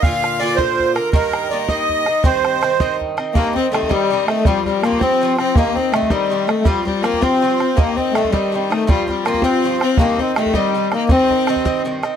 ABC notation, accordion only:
X:1
M:6/8
L:1/8
Q:3/8=108
K:Cdor
V:1 name="Accordion"
f2 d c2 B | B2 d e3 | c4 z2 | B, C A, G,2 A, |
G, G, B, C2 C | B, C A, G,2 A, | G, G, B, C3 | B, C A, G,2 A, |
G, G, B, C3 | B, C A, G,2 B, | C4 z2 |]